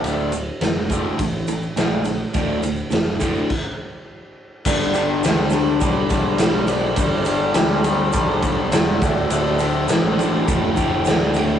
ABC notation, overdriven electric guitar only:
X:1
M:4/4
L:1/8
Q:1/4=104
K:Dm
V:1 name="Overdriven electric guitar" clef=bass
[D,,A,,D,] [D,,A,,] [D,,A,,] [D,,A,,D,] [D,,A,,] [D,,A,,] [D,,A,,D,] [D,,A,,] | [D,,A,,D,] [D,,A,,] [D,,A,,] [D,,A,,D,] z4 | [K:Gmix] [G,,D,G,] [G,,D,G,] [G,,D,G,] [G,,D,G,] [G,,D,G,] [G,,D,G,] [G,,D,G,] [G,,D,G,] | [G,,D,G,] [G,,D,G,] [G,,D,G,] [G,,D,G,] [G,,D,G,] [G,,D,G,] [G,,D,G,] [D,,A,,D,] |
[D,,A,,D,] [D,,A,,D,] [D,,A,,D,] [D,,A,,D,] [D,,A,,D,] [D,,A,,D,] [D,,A,,D,] [D,,A,,D,] |]